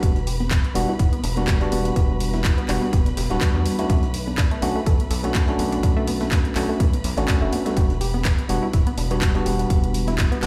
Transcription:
Already playing: tine electric piano G3 B3 D4 F#4, violin section B4 B5
0.03 analog synth bass E1, synth arpeggio sound G4, kick, closed hi-hat
0.16 closed hi-hat
0.27 synth arpeggio sound G4, closed hi-hat, open hi-hat
0.40 synth arpeggio sound B3, high conga
0.51 synth arpeggio sound B3, kick, snare, clap, closed hi-hat
0.65 closed hi-hat
0.75 analog synth bass E1, tine electric piano G3 B3 D4 F#4, closed hi-hat, open hi-hat
0.89 synth arpeggio sound E4
0.99 analog synth bass D1, synth arpeggio sound E4, kick, closed hi-hat
1.13 synth arpeggio sound B3, closed hi-hat, high conga
1.24 analog synth bass E1, synth arpeggio sound D4, closed hi-hat, open hi-hat
1.36 tine electric piano G3 B3 D4 F#4, synth arpeggio sound B3, closed hi-hat
1.47 synth arpeggio sound G4, kick, snare, clap, closed hi-hat
1.60 tine electric piano G3 B3 D4 F#4, closed hi-hat
1.72 analog synth bass E1, synth arpeggio sound G4, closed hi-hat, open hi-hat, high conga
1.85 synth arpeggio sound B3, closed hi-hat
1.96 analog synth bass E1, synth arpeggio sound B3, kick, closed hi-hat
2.20 closed hi-hat, open hi-hat
2.34 synth arpeggio sound E4, snare, high conga
2.44 synth arpeggio sound E4, kick, snare, clap, closed hi-hat
2.58 synth arpeggio sound B3, closed hi-hat
2.68 analog synth bass E1, tine electric piano G3 B3 D4 F#4, synth arpeggio sound D4, clap, closed hi-hat, open hi-hat
2.82 synth arpeggio sound B3
2.93 analog synth bass E1, synth arpeggio sound G4, kick, closed hi-hat
3.06 closed hi-hat, high conga
3.17 analog synth bass E1, synth arpeggio sound G4, snare, closed hi-hat, open hi-hat
3.30 analog synth bass D1, tine electric piano G3 B3 D4 F#4, synth arpeggio sound B3, snare, closed hi-hat
3.41 synth arpeggio sound B3, kick, snare, clap, closed hi-hat
3.55 analog synth bass E2, low conga
3.65 closed hi-hat, open hi-hat, high conga
3.78 tine electric piano A3 C#4 D4 F#4, synth arpeggio sound E4, snare, closed hi-hat
3.90 analog synth bass B1, synth arpeggio sound A3, kick, closed hi-hat
4.03 closed hi-hat
4.14 closed hi-hat, open hi-hat
4.27 synth arpeggio sound D4, high conga
4.38 synth arpeggio sound D4, kick, snare, clap, closed hi-hat
4.51 synth arpeggio sound A3, closed hi-hat
4.62 analog synth bass B1, tine electric piano A3 C#4 D4 F#4, synth arpeggio sound B3, closed hi-hat, open hi-hat
4.76 synth arpeggio sound A3
4.86 analog synth bass A1, synth arpeggio sound A4, kick, closed hi-hat
5.00 closed hi-hat, high conga
5.11 analog synth bass B1, synth arpeggio sound A4, closed hi-hat, open hi-hat
5.23 tine electric piano A3 C#4 D4 F#4, synth arpeggio sound A3, closed hi-hat
5.35 synth arpeggio sound A3, kick, snare, clap, closed hi-hat
5.47 tine electric piano A3 C#4 D4 F#4, closed hi-hat
5.59 analog synth bass B1, closed hi-hat, open hi-hat, high conga
5.72 synth arpeggio sound D4, closed hi-hat
5.83 analog synth bass B1, synth arpeggio sound D4, kick, closed hi-hat
5.96 synth arpeggio sound A3
6.07 synth arpeggio sound B3, closed hi-hat, open hi-hat
6.21 synth arpeggio sound A3, snare, high conga
6.31 synth arpeggio sound A4, kick, snare, clap, closed hi-hat
6.45 closed hi-hat
6.55 analog synth bass B1, tine electric piano A3 C#4 D4 F#4, synth arpeggio sound A4, clap, closed hi-hat, open hi-hat
6.69 synth arpeggio sound A3
6.80 analog synth bass B1, synth arpeggio sound A3, kick, closed hi-hat
6.93 closed hi-hat, high conga
7.04 analog synth bass B1, snare, closed hi-hat, open hi-hat
7.17 analog synth bass A1, tine electric piano A3 C#4 D4 F#4, synth arpeggio sound D4, snare, closed hi-hat
7.28 synth arpeggio sound D4, kick, snare, clap, closed hi-hat
7.42 analog synth bass F#1, synth arpeggio sound A3
7.52 synth arpeggio sound B3, closed hi-hat, open hi-hat, high conga
7.66 tine electric piano G3 B3 D4 F#4, synth arpeggio sound A3, snare, closed hi-hat
7.77 analog synth bass E1, synth arpeggio sound G4, kick, closed hi-hat
7.90 closed hi-hat
8.01 synth arpeggio sound G4, closed hi-hat, open hi-hat
8.14 synth arpeggio sound B3, high conga
8.25 synth arpeggio sound B3, kick, snare, clap, closed hi-hat
8.38 closed hi-hat
8.49 analog synth bass E1, tine electric piano G3 B3 D4 F#4, closed hi-hat, open hi-hat
8.63 synth arpeggio sound E4
8.73 analog synth bass D1, synth arpeggio sound E4, kick, closed hi-hat
8.87 synth arpeggio sound B3, closed hi-hat, high conga
8.98 analog synth bass E1, synth arpeggio sound D4, closed hi-hat, open hi-hat
9.11 tine electric piano G3 B3 D4 F#4, synth arpeggio sound B3, closed hi-hat
9.21 synth arpeggio sound G4, kick, snare, clap, closed hi-hat
9.34 tine electric piano G3 B3 D4 F#4, closed hi-hat
9.46 analog synth bass E1, synth arpeggio sound G4, closed hi-hat, open hi-hat, high conga
9.59 synth arpeggio sound B3, closed hi-hat
9.70 analog synth bass E1, synth arpeggio sound B3, kick, closed hi-hat
9.84 closed hi-hat
9.94 closed hi-hat, open hi-hat
10.07 synth arpeggio sound E4, snare, closed hi-hat, high conga
10.18 synth arpeggio sound E4, kick, snare, clap, closed hi-hat
10.32 synth arpeggio sound B3, closed hi-hat
10.42 analog synth bass E1, tine electric piano G3 B3 D4 F#4, synth arpeggio sound D4, snare, clap, closed hi-hat, open hi-hat

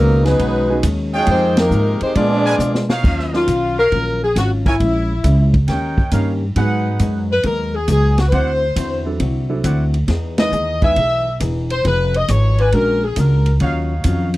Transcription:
Already playing: upright bass C#2, hollow-body jazz guitar B2 D#3 G#3 C#4, saxophone section F#3 B3 D#4 A#4, trombone section A#3
0.24 grand piano F#3 B3 C#4 D#4 G#4, trombone section F#3 G#3 B3, saxophone section G#3 D#4 F#4 B4, snare, ride
0.39 upright bass B1, hollow-body jazz guitar B2 D#3 G#3 C#4, kick, ride
0.69 grand piano F#3 B3 C#4 D#4 G#4
0.83 upright bass D#2, hollow-body jazz guitar B2 D#3 G#3 C#4, kick, hi-hat pedal, ride
1.13 trombone section F#3 G#3 C#4, saxophone section G#3 D#4 F#4 C#5, trumpet section F4 G#4 D#5 G5
1.26 upright bass F2, trombone section D#3 G#3 C4, hollow-body jazz guitar F3 G#3 D#4, kick, ride
1.31 saxophone section G#3 D#4 G4 C5, hollow-body jazz guitar G4
1.57 trombone section C3 D#3 A#3, saxophone section G#3 D#4 G4 A#4, snare, ride
1.71 upright bass G#2, hollow-body jazz guitar F3 G#3 D#4 G4, hi-hat pedal
2.01 trombone section D#3 G#3 C4, saxophone section G#3 D#4 G4 C5, muted upright bass stroke, ride
2.15 hollow-body jazz guitar A#2 G#3 B3 D4, upright bass A#2, trombone section F3 G#3 D4, grand piano G#3 B3 D4 F4 A#4, saxophone section B3 F4 G#4 D5, kick, ride
2.46 trumpet section D4 A#4 B4 G#5
2.58 hollow-body jazz guitar A#2 G#3 B3 D4, upright bass B2, hi-hat pedal
2.75 snare
2.89 trumpet section D#4 F#4 C#5 F5, snare
3.03 upright bass D#2, hollow-body jazz guitar D#3 F#3 C#4 F4, kick, crash
3.19 snare
3.33 grand piano F#3 C#4 D#4 F4 A#4, saxophone section F4, snare
3.47 upright bass B1, hollow-body jazz guitar D#3 F#3 C#4 F4, kick, hi-hat pedal, ride
3.78 trumpet section D#4 F#4 C#5 F5, saxophone section A#4
3.91 upright bass A#1, hollow-body jazz guitar D#3 F#3 C#4 F4, kick, ride
4.24 saxophone section G#4
4.36 upright bass G#1, hollow-body jazz guitar D#3 F#3 C#4 F4, saxophone section F#4, kick, snare, hi-hat pedal, ride
4.66 trumpet section E4 A#4 C#5 G#5, saxophone section E4, kick, ride
4.80 upright bass A#1, hollow-body jazz guitar A#2 G#3 C#4 E4, kick, ride
5.24 upright bass C#2, hollow-body jazz guitar A#2 G#3 C#4 E4, kick, hi-hat pedal, ride
5.54 kick, ride
5.68 upright bass D#2, hollow-body jazz guitar D#3 A#3 C#4 G4, trumpet section D#4 A#4 C#5 G5, kick, snare, ride
5.98 kick
6.11 upright bass G2, hollow-body jazz guitar D#3 A#3 C#4 G4, grand piano G3 A#3 C#4 D#4 A#4, trumpet section D#4 A#4 C#5 F5, kick, hi-hat pedal, ride
6.56 upright bass G#2, hollow-body jazz guitar G#2 F#3 B3 D#4, grand piano F#3 G#3 B3 D#4 G#4, trumpet section D#4 G#4 B4 F#5, kick, ride
6.99 upright bass F#2, hollow-body jazz guitar G#2 F#3 B3 D#4, kick, hi-hat pedal, ride
7.32 saxophone section B4
7.43 upright bass D#2, hollow-body jazz guitar G#2 F#3 B3 D#4, saxophone section A#4, kick, ride
7.75 saxophone section G#4
7.88 upright bass C#2, hollow-body jazz guitar G#2 F#3 B3 D#4, saxophone section G#4, kick, hi-hat pedal, ride
8.18 saxophone section F#4, snare, ride
8.28 trumpet section E4 C5 D5 F#5, saxophone section B4, ride
8.32 upright bass D2, hollow-body jazz guitar D3 C4 E4 F#4, saxophone section C5, kick
8.76 upright bass E2, hollow-body jazz guitar D3 C4 E4 F#4, kick, hi-hat pedal, ride
9.06 grand piano F#3 C4 D4 E4 A4
9.20 upright bass C2, hollow-body jazz guitar D3 C4 E4 F#4, kick, ride
9.49 grand piano F#3 C4 D4 E4 A4
9.64 upright bass D2, hollow-body jazz guitar D3 C4 E4 F#4, trumpet section E4 C5 D5 F#5, kick, hi-hat pedal, ride
9.94 ride
10.08 upright bass E2, hollow-body jazz guitar E3 B3 D#4 G#4, kick, snare, ride
10.38 grand piano G#3 B3 D#4 E4 B4, saxophone section D#5, snare, ride
10.52 upright bass D#2, hollow-body jazz guitar E3 B3 D#4 G#4, hi-hat pedal
10.82 grand piano G#3 B3 D#4 E4 B4, trumpet section E4 B4 D#5 G#5, saxophone section E5, kick, ride
10.96 upright bass B1, hollow-body jazz guitar E3 B3 D#4 G#4, kick, ride
11.40 upright bass E1, hollow-body jazz guitar E3 B3 D#4 G#4, kick, hi-hat pedal, ride
11.70 saxophone section C5, ride
11.84 upright bass F1, hollow-body jazz guitar F3 B3 D#4 G#4, saxophone section B4, kick, ride
12.14 saxophone section D#5, ride
12.28 upright bass G#1, hollow-body jazz guitar F3 B3 D#4 G#4, saxophone section C#5, kick, hi-hat pedal, ride
12.58 trumpet section F#4 A#4 D5 G#5, saxophone section B4, ride
12.72 upright bass A#1, hollow-body jazz guitar A#2 G#3 D4 F#4, grand piano G#3 C#4 D4 F#4 A#4, saxophone section A#4, kick, ride
13.05 saxophone section G#4
13.16 upright bass C#2, hollow-body jazz guitar A#2 G#3 D4 F#4, saxophone section A#4, kick, hi-hat pedal, ride
13.46 ride
13.60 upright bass D#2, hollow-body jazz guitar D#3 F#3 C#4 F4, trumpet section D#4 F#4 C#5 F5, kick, ride
14.04 upright bass F2, hollow-body jazz guitar D#3 F#3 C#4 F4, kick, hi-hat pedal, ride
14.34 ride

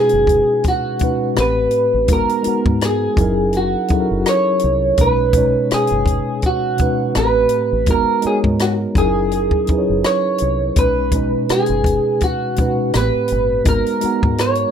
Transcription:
Already playing: tine electric piano B2 G#3 C#4 D#4 F#4 B4, clean electric guitar G#4
0.09 closed hi-hat
0.13 fingered electric bass F#1
0.27 kick, closed hi-hat
0.64 kick, closed hi-hat
0.68 clean electric guitar F#4
0.99 tine electric piano B2 G#3 C#4 D#4, kick, closed hi-hat
1.04 tine electric piano B4
1.34 fingered electric bass A1, tine electric piano A2 A3 C4 G4, cross-stick, closed hi-hat
1.39 tine electric piano B4, clean electric guitar B4
1.71 closed hi-hat
1.94 fingered electric bass A1
2.06 fingered electric bass G#1, tine electric piano G#3 D#4 F#4 A#4, kick, closed hi-hat
2.12 tine electric piano B3, clean electric guitar A#4
2.29 closed hi-hat
2.43 tine electric piano G#3 D#4 F#4 A#4, muted fingered electric bass stroke, closed hi-hat
2.48 tine electric piano B3
2.66 fingered electric bass G#2, kick
2.81 cross-stick, closed hi-hat
2.85 clean electric guitar G#4
3.16 fingered electric bass F#1, tine electric piano F#3 C#4 D#4 E4 G#4, kick, closed hi-hat
3.21 tine electric piano A#4
3.53 closed hi-hat
3.57 clean electric guitar F#4
3.88 tine electric piano F#3 C#4 D#4 E4, muted fingered electric bass stroke, kick, closed hi-hat
3.93 tine electric piano G#4 A4
4.00 tine electric piano A#4
4.11 fingered electric bass F#1
4.26 clean electric guitar C#5, cross-stick, closed hi-hat
4.59 closed hi-hat
4.64 fingered electric bass C2
4.97 fingered electric bass B1, tine electric piano B2 G#3 C#4 D#4, kick, closed hi-hat
5.01 clean electric guitar B4, tine electric piano B4
5.32 tine electric piano B2 G#3 C#4 D#4, kick, closed hi-hat
5.38 tine electric piano C#5
5.71 clean electric guitar G#4, muted fingered electric bass stroke, cross-stick, closed hi-hat
5.87 closed hi-hat
5.92 fingered electric bass F#1
6.06 kick, closed hi-hat
6.42 kick, closed hi-hat
6.46 clean electric guitar F#4
6.77 tine electric piano B2 G#3 C#4 D#4, kick, closed hi-hat
6.82 tine electric piano B4
7.13 fingered electric bass A1, tine electric piano A2 A3 C4 G4, clean electric guitar B4, cross-stick, closed hi-hat
7.19 tine electric piano A#4
7.25 tine electric piano B4
7.49 closed hi-hat
7.73 fingered electric bass A1
7.86 fingered electric bass G#1, tine electric piano G#3 D#4 F#4 A#4, kick, closed hi-hat
7.91 tine electric piano B3, clean electric guitar A#4
8.22 tine electric piano G#3 D#4 F#4, muted fingered electric bass stroke, closed hi-hat
8.26 clean electric guitar G#4, tine electric piano A#4 C#5
8.44 fingered electric bass G#2, kick
8.59 clean electric guitar F#4, cross-stick, closed hi-hat
8.95 fingered electric bass F#1, tine electric piano F#3 C#4 D#4 E4, clean electric guitar G#4, kick, closed hi-hat
8.99 tine electric piano G#4 A#4
9.32 closed hi-hat
9.51 kick
9.67 tine electric piano F#3 C#4 D#4 E4, muted fingered electric bass stroke, kick, closed hi-hat
9.71 tine electric piano G#4 B4
9.78 tine electric piano C#5
9.90 fingered electric bass F#1
10.04 clean electric guitar C#5, cross-stick, closed hi-hat
10.38 fingered electric bass C2, closed hi-hat
10.76 fingered electric bass B1, tine electric piano B2 G#3 C#4, clean electric guitar B4, kick, closed hi-hat
10.80 tine electric piano D#4 B4
11.12 tine electric piano B2 G#3 C#4, kick, closed hi-hat
11.16 tine electric piano D#4 B4
11.49 clean electric guitar G#4, muted fingered electric bass stroke, cross-stick, closed hi-hat
11.66 fingered electric bass F#1, closed hi-hat
11.84 kick, closed hi-hat
12.21 clean electric guitar F#4, kick, closed hi-hat
12.56 tine electric piano B2 G#3 C#4 D#4, kick, closed hi-hat
12.61 tine electric piano B4
12.92 fingered electric bass A1, tine electric piano A2 A3 B3 G4, cross-stick, closed hi-hat
12.97 clean electric guitar B4, tine electric piano B4
13.01 tine electric piano C4
13.15 muted fingered electric bass stroke
13.28 closed hi-hat
13.32 fingered electric bass G1
13.64 fingered electric bass G#1, tine electric piano G#3 D#4 F#4 A#4, kick, closed hi-hat
13.69 tine electric piano B3, clean electric guitar A#4
13.86 closed hi-hat
14.01 tine electric piano G#3 D#4 F#4 A#4, muted fingered electric bass stroke, closed hi-hat
14.05 tine electric piano B3
14.23 fingered electric bass G#2, kick
14.38 clean electric guitar C#5, cross-stick, closed hi-hat
14.55 closed hi-hat

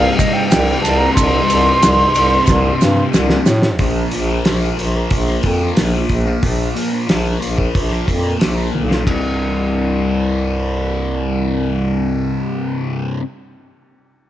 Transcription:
Already playing: distorted electric guitar C2 G2 C3, flute F5
0.18 flute D#5, kick, ride, maracas
0.33 flute G5
0.49 distorted electric guitar C2 G2, bass clarinet C2, flute G5, snare, ride, maracas
0.54 distorted electric guitar C3
0.82 distorted electric guitar C2 G2 C3, bass clarinet C2, flute A5, ride, maracas
0.98 flute A#5
1.14 bass clarinet C2, flute C6, kick, ride, maracas
1.49 bass clarinet C2, ride, maracas
1.82 bass clarinet C2, snare, ride, maracas
2.14 bass clarinet C2, ride, maracas
2.47 bass clarinet C2, kick, snare, maracas
2.80 bass clarinet G2, snare, maracas
3.14 distorted electric guitar C2 G2 C3, bass clarinet C2, snare, maracas
3.30 snare
3.46 bass clarinet A2, snare, maracas
3.62 snare
3.79 bass clarinet A#1, distorted electric guitar A#2 F3 A#3, kick, open hi-hat
4.11 bass clarinet A#1, distorted electric guitar A#2 F3, open hi-hat
4.16 distorted electric guitar A#3
4.30 distorted electric guitar F3 A#3
4.45 bass clarinet A#1, distorted electric guitar A#2 F3 A#3, snare, open hi-hat
4.78 bass clarinet A#1, distorted electric guitar A#2 F3 A#3, open hi-hat
4.95 distorted electric guitar F3 A#3
5.11 bass clarinet A#1, kick, open hi-hat
5.28 distorted electric guitar F3 A#3
5.43 bass clarinet F2, distorted electric guitar A#2 F3, kick, open hi-hat
5.47 distorted electric guitar A#3
5.61 distorted electric guitar F3 A#3
5.77 bass clarinet A#1, distorted electric guitar A#2 F3 A#3, snare, open hi-hat
5.93 distorted electric guitar F3 A#3
6.09 bass clarinet A#1, kick, open hi-hat
6.26 distorted electric guitar F3 A#3
6.42 bass clarinet A#1, distorted electric guitar A#2 F3 A#3, kick, open hi-hat
6.75 distorted electric guitar A#2 F3 A#3, open hi-hat
6.92 distorted electric guitar F3 A#3
7.07 bass clarinet A#1, distorted electric guitar A#2 F3 A#3, snare, open hi-hat
7.39 bass clarinet A#1, distorted electric guitar A#2 F3 A#3, open hi-hat
7.56 distorted electric guitar F3 A#3, kick
7.75 bass clarinet A#1, kick, open hi-hat
7.89 distorted electric guitar F3 A#3
8.06 bass clarinet F2, distorted electric guitar A#2 F3 A#3, kick, open hi-hat
8.21 distorted electric guitar F3 A#3
8.38 distorted electric guitar A#2 F3 A#3, open hi-hat
8.42 bass clarinet A#1, snare
8.54 distorted electric guitar F3 A#3
8.75 bass clarinet B1, high tom
8.88 distorted electric guitar F3 A#3, snare
9.04 distorted electric guitar C2 G2 C3, bass clarinet C2, kick, ride bell

